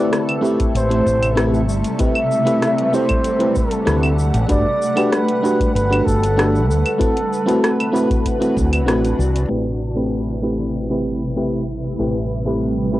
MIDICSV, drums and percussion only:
0, 0, Header, 1, 2, 480
1, 0, Start_track
1, 0, Tempo, 625000
1, 1537, Time_signature, 4, 2, 24, 8
1, 9983, End_track
2, 0, Start_track
2, 0, Title_t, "Drums"
2, 98, Note_on_c, 9, 37, 95
2, 98, Note_on_c, 9, 42, 51
2, 105, Note_on_c, 9, 69, 42
2, 175, Note_off_c, 9, 37, 0
2, 175, Note_off_c, 9, 42, 0
2, 182, Note_off_c, 9, 69, 0
2, 221, Note_on_c, 9, 42, 30
2, 221, Note_on_c, 9, 75, 81
2, 298, Note_off_c, 9, 42, 0
2, 298, Note_off_c, 9, 75, 0
2, 344, Note_on_c, 9, 69, 75
2, 420, Note_off_c, 9, 69, 0
2, 459, Note_on_c, 9, 42, 42
2, 460, Note_on_c, 9, 36, 99
2, 466, Note_on_c, 9, 69, 31
2, 536, Note_off_c, 9, 42, 0
2, 537, Note_off_c, 9, 36, 0
2, 543, Note_off_c, 9, 69, 0
2, 579, Note_on_c, 9, 42, 52
2, 585, Note_on_c, 9, 69, 42
2, 656, Note_off_c, 9, 42, 0
2, 662, Note_off_c, 9, 69, 0
2, 701, Note_on_c, 9, 42, 29
2, 778, Note_off_c, 9, 42, 0
2, 817, Note_on_c, 9, 36, 59
2, 822, Note_on_c, 9, 69, 75
2, 893, Note_off_c, 9, 36, 0
2, 899, Note_off_c, 9, 69, 0
2, 942, Note_on_c, 9, 42, 42
2, 942, Note_on_c, 9, 75, 71
2, 948, Note_on_c, 9, 69, 32
2, 1018, Note_off_c, 9, 42, 0
2, 1018, Note_off_c, 9, 75, 0
2, 1025, Note_off_c, 9, 69, 0
2, 1055, Note_on_c, 9, 37, 96
2, 1055, Note_on_c, 9, 42, 56
2, 1062, Note_on_c, 9, 69, 44
2, 1132, Note_off_c, 9, 37, 0
2, 1132, Note_off_c, 9, 42, 0
2, 1138, Note_off_c, 9, 69, 0
2, 1184, Note_on_c, 9, 69, 30
2, 1261, Note_off_c, 9, 69, 0
2, 1299, Note_on_c, 9, 69, 77
2, 1376, Note_off_c, 9, 69, 0
2, 1416, Note_on_c, 9, 42, 43
2, 1423, Note_on_c, 9, 69, 32
2, 1493, Note_off_c, 9, 42, 0
2, 1500, Note_off_c, 9, 69, 0
2, 1529, Note_on_c, 9, 42, 54
2, 1536, Note_on_c, 9, 36, 118
2, 1536, Note_on_c, 9, 69, 45
2, 1606, Note_off_c, 9, 42, 0
2, 1613, Note_off_c, 9, 36, 0
2, 1613, Note_off_c, 9, 69, 0
2, 1654, Note_on_c, 9, 75, 87
2, 1731, Note_off_c, 9, 75, 0
2, 1778, Note_on_c, 9, 69, 72
2, 1855, Note_off_c, 9, 69, 0
2, 1896, Note_on_c, 9, 42, 41
2, 1902, Note_on_c, 9, 69, 30
2, 1972, Note_off_c, 9, 42, 0
2, 1979, Note_off_c, 9, 69, 0
2, 2015, Note_on_c, 9, 37, 91
2, 2015, Note_on_c, 9, 42, 51
2, 2022, Note_on_c, 9, 69, 42
2, 2092, Note_off_c, 9, 37, 0
2, 2092, Note_off_c, 9, 42, 0
2, 2098, Note_off_c, 9, 69, 0
2, 2138, Note_on_c, 9, 42, 31
2, 2215, Note_off_c, 9, 42, 0
2, 2256, Note_on_c, 9, 69, 67
2, 2333, Note_off_c, 9, 69, 0
2, 2373, Note_on_c, 9, 42, 43
2, 2373, Note_on_c, 9, 75, 77
2, 2379, Note_on_c, 9, 69, 32
2, 2380, Note_on_c, 9, 36, 100
2, 2450, Note_off_c, 9, 42, 0
2, 2450, Note_off_c, 9, 75, 0
2, 2456, Note_off_c, 9, 69, 0
2, 2457, Note_off_c, 9, 36, 0
2, 2491, Note_on_c, 9, 42, 54
2, 2498, Note_on_c, 9, 69, 42
2, 2568, Note_off_c, 9, 42, 0
2, 2575, Note_off_c, 9, 69, 0
2, 2612, Note_on_c, 9, 42, 29
2, 2689, Note_off_c, 9, 42, 0
2, 2731, Note_on_c, 9, 69, 72
2, 2735, Note_on_c, 9, 36, 95
2, 2808, Note_off_c, 9, 69, 0
2, 2812, Note_off_c, 9, 36, 0
2, 2850, Note_on_c, 9, 42, 43
2, 2857, Note_on_c, 9, 69, 32
2, 2927, Note_off_c, 9, 42, 0
2, 2934, Note_off_c, 9, 69, 0
2, 2972, Note_on_c, 9, 37, 94
2, 2972, Note_on_c, 9, 42, 54
2, 2979, Note_on_c, 9, 69, 43
2, 3049, Note_off_c, 9, 37, 0
2, 3049, Note_off_c, 9, 42, 0
2, 3055, Note_off_c, 9, 69, 0
2, 3096, Note_on_c, 9, 75, 81
2, 3103, Note_on_c, 9, 69, 28
2, 3173, Note_off_c, 9, 75, 0
2, 3180, Note_off_c, 9, 69, 0
2, 3216, Note_on_c, 9, 69, 79
2, 3293, Note_off_c, 9, 69, 0
2, 3333, Note_on_c, 9, 42, 43
2, 3340, Note_on_c, 9, 69, 33
2, 3410, Note_off_c, 9, 42, 0
2, 3417, Note_off_c, 9, 69, 0
2, 3449, Note_on_c, 9, 42, 54
2, 3455, Note_on_c, 9, 36, 116
2, 3456, Note_on_c, 9, 69, 44
2, 3526, Note_off_c, 9, 42, 0
2, 3532, Note_off_c, 9, 36, 0
2, 3532, Note_off_c, 9, 69, 0
2, 3702, Note_on_c, 9, 69, 76
2, 3779, Note_off_c, 9, 69, 0
2, 3816, Note_on_c, 9, 42, 44
2, 3816, Note_on_c, 9, 75, 77
2, 3822, Note_on_c, 9, 69, 30
2, 3892, Note_off_c, 9, 42, 0
2, 3892, Note_off_c, 9, 75, 0
2, 3899, Note_off_c, 9, 69, 0
2, 3936, Note_on_c, 9, 37, 92
2, 3936, Note_on_c, 9, 42, 54
2, 3942, Note_on_c, 9, 69, 42
2, 4013, Note_off_c, 9, 37, 0
2, 4013, Note_off_c, 9, 42, 0
2, 4019, Note_off_c, 9, 69, 0
2, 4059, Note_on_c, 9, 42, 32
2, 4136, Note_off_c, 9, 42, 0
2, 4187, Note_on_c, 9, 69, 68
2, 4263, Note_off_c, 9, 69, 0
2, 4301, Note_on_c, 9, 36, 100
2, 4307, Note_on_c, 9, 42, 45
2, 4313, Note_on_c, 9, 69, 33
2, 4378, Note_off_c, 9, 36, 0
2, 4384, Note_off_c, 9, 42, 0
2, 4390, Note_off_c, 9, 69, 0
2, 4426, Note_on_c, 9, 42, 58
2, 4432, Note_on_c, 9, 69, 40
2, 4503, Note_off_c, 9, 42, 0
2, 4509, Note_off_c, 9, 69, 0
2, 4551, Note_on_c, 9, 42, 33
2, 4551, Note_on_c, 9, 75, 84
2, 4627, Note_off_c, 9, 42, 0
2, 4627, Note_off_c, 9, 75, 0
2, 4657, Note_on_c, 9, 36, 58
2, 4670, Note_on_c, 9, 69, 74
2, 4734, Note_off_c, 9, 36, 0
2, 4746, Note_off_c, 9, 69, 0
2, 4788, Note_on_c, 9, 42, 46
2, 4794, Note_on_c, 9, 69, 33
2, 4865, Note_off_c, 9, 42, 0
2, 4871, Note_off_c, 9, 69, 0
2, 4907, Note_on_c, 9, 37, 105
2, 4907, Note_on_c, 9, 42, 58
2, 4914, Note_on_c, 9, 69, 42
2, 4984, Note_off_c, 9, 37, 0
2, 4984, Note_off_c, 9, 42, 0
2, 4991, Note_off_c, 9, 69, 0
2, 5034, Note_on_c, 9, 69, 30
2, 5111, Note_off_c, 9, 69, 0
2, 5153, Note_on_c, 9, 69, 77
2, 5230, Note_off_c, 9, 69, 0
2, 5266, Note_on_c, 9, 42, 45
2, 5266, Note_on_c, 9, 75, 78
2, 5272, Note_on_c, 9, 69, 31
2, 5342, Note_off_c, 9, 42, 0
2, 5342, Note_off_c, 9, 75, 0
2, 5349, Note_off_c, 9, 69, 0
2, 5378, Note_on_c, 9, 36, 113
2, 5382, Note_on_c, 9, 42, 59
2, 5388, Note_on_c, 9, 69, 42
2, 5455, Note_off_c, 9, 36, 0
2, 5459, Note_off_c, 9, 42, 0
2, 5465, Note_off_c, 9, 69, 0
2, 5505, Note_on_c, 9, 42, 33
2, 5582, Note_off_c, 9, 42, 0
2, 5629, Note_on_c, 9, 69, 71
2, 5706, Note_off_c, 9, 69, 0
2, 5748, Note_on_c, 9, 42, 46
2, 5755, Note_on_c, 9, 69, 31
2, 5825, Note_off_c, 9, 42, 0
2, 5832, Note_off_c, 9, 69, 0
2, 5866, Note_on_c, 9, 37, 102
2, 5866, Note_on_c, 9, 42, 59
2, 5873, Note_on_c, 9, 69, 44
2, 5943, Note_off_c, 9, 37, 0
2, 5943, Note_off_c, 9, 42, 0
2, 5949, Note_off_c, 9, 69, 0
2, 5991, Note_on_c, 9, 42, 33
2, 5991, Note_on_c, 9, 75, 82
2, 6068, Note_off_c, 9, 42, 0
2, 6068, Note_off_c, 9, 75, 0
2, 6111, Note_on_c, 9, 69, 74
2, 6188, Note_off_c, 9, 69, 0
2, 6223, Note_on_c, 9, 36, 105
2, 6228, Note_on_c, 9, 42, 46
2, 6235, Note_on_c, 9, 69, 29
2, 6299, Note_off_c, 9, 36, 0
2, 6305, Note_off_c, 9, 42, 0
2, 6311, Note_off_c, 9, 69, 0
2, 6339, Note_on_c, 9, 36, 60
2, 6342, Note_on_c, 9, 42, 57
2, 6349, Note_on_c, 9, 69, 39
2, 6416, Note_off_c, 9, 36, 0
2, 6419, Note_off_c, 9, 42, 0
2, 6425, Note_off_c, 9, 69, 0
2, 6465, Note_on_c, 9, 42, 31
2, 6472, Note_on_c, 9, 69, 32
2, 6542, Note_off_c, 9, 42, 0
2, 6549, Note_off_c, 9, 69, 0
2, 6579, Note_on_c, 9, 36, 97
2, 6588, Note_on_c, 9, 69, 77
2, 6656, Note_off_c, 9, 36, 0
2, 6664, Note_off_c, 9, 69, 0
2, 6704, Note_on_c, 9, 42, 46
2, 6704, Note_on_c, 9, 75, 77
2, 6710, Note_on_c, 9, 69, 31
2, 6781, Note_off_c, 9, 42, 0
2, 6781, Note_off_c, 9, 75, 0
2, 6787, Note_off_c, 9, 69, 0
2, 6822, Note_on_c, 9, 37, 100
2, 6822, Note_on_c, 9, 42, 56
2, 6829, Note_on_c, 9, 69, 45
2, 6899, Note_off_c, 9, 37, 0
2, 6899, Note_off_c, 9, 42, 0
2, 6906, Note_off_c, 9, 69, 0
2, 6948, Note_on_c, 9, 42, 31
2, 6955, Note_on_c, 9, 69, 30
2, 7025, Note_off_c, 9, 42, 0
2, 7031, Note_off_c, 9, 69, 0
2, 7069, Note_on_c, 9, 69, 77
2, 7145, Note_off_c, 9, 69, 0
2, 7187, Note_on_c, 9, 42, 44
2, 7194, Note_on_c, 9, 69, 33
2, 7264, Note_off_c, 9, 42, 0
2, 7270, Note_off_c, 9, 69, 0
2, 8265, Note_on_c, 9, 69, 35
2, 8342, Note_off_c, 9, 69, 0
2, 8498, Note_on_c, 9, 69, 68
2, 8575, Note_off_c, 9, 69, 0
2, 8745, Note_on_c, 9, 69, 39
2, 8822, Note_off_c, 9, 69, 0
2, 8986, Note_on_c, 9, 69, 66
2, 9063, Note_off_c, 9, 69, 0
2, 9105, Note_on_c, 9, 69, 28
2, 9182, Note_off_c, 9, 69, 0
2, 9221, Note_on_c, 9, 69, 37
2, 9298, Note_off_c, 9, 69, 0
2, 9465, Note_on_c, 9, 69, 69
2, 9542, Note_off_c, 9, 69, 0
2, 9592, Note_on_c, 9, 69, 27
2, 9669, Note_off_c, 9, 69, 0
2, 9707, Note_on_c, 9, 69, 39
2, 9784, Note_off_c, 9, 69, 0
2, 9948, Note_on_c, 9, 69, 64
2, 9983, Note_off_c, 9, 69, 0
2, 9983, End_track
0, 0, End_of_file